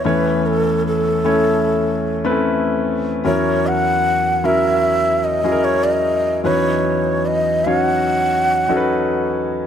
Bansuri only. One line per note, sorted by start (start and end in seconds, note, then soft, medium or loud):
0.06 0.48 B4 medium
0.46 0.86 A4 medium
0.87 2.42 A4 medium
3.26 3.69 C#5 medium
3.67 4.47 F#5 medium
4.45 5.26 E5 medium
5.24 5.66 D#5 medium
5.64 5.86 C#5 medium
5.84 6.43 D#5 medium
6.44 7.28 C#5 medium
7.26 7.67 D#5 medium
7.65 7.78 F5 medium
7.78 9.30 F#5 medium